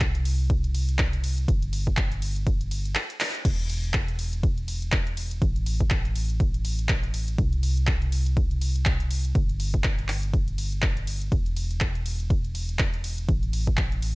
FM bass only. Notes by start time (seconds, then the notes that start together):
Already playing: C2
1.48 G1
3.45 E1
5.42 A1
7.38 C2
9.35 G1
11.32 E1
13.29 A1